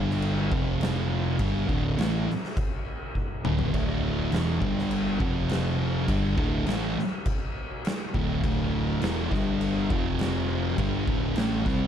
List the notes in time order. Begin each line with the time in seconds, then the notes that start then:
Already playing: G1 G2 D3 G3
0.10 snare
0.22 crash
0.52 F1 F2 C3 F3, kick
0.81 snare, crash
1.39 G1 G2 D3 G3, kick, crash
1.68 D1 D2 A2 D3, kick
1.98 A1 A2 E3 A3, snare, crash
2.30 snare
2.44 snare
2.57 kick, crash
3.15 kick
3.44 D1 D2 A2 D3, mid tom
3.59 floor tom
3.74 D1 D2 A2 D3, kick, crash
4.32 E1 E2 B2 E3, snare, crash
4.61 G1 G2 D3 G3, kick
4.79 snare
4.91 crash
5.20 F1 F2 C3 F3, kick
5.49 snare, crash
6.08 G1 G2 D3 G3, kick, crash
6.37 D1 D2 A2 D3, kick
6.67 A1 A2 E3 A3, snare, crash
6.99 snare
7.26 kick, crash
7.85 snare, crash
8.14 D1 D2 A2 D3, kick
8.43 D1 D2 A2 D3, kick, crash
9.02 E1 E2 B2 E3, snare, crash
9.31 G1 G2 D3 G3, kick, snare
9.61 crash
9.90 F1 F2 C3 F3, kick
10.19 snare, crash
10.78 G1 G2 D3 G3, kick, crash
11.07 D1 D2 A2 D3, kick
11.36 A1 A2 E3 A3, snare, crash
11.66 C2 C3 G3 C4, kick, snare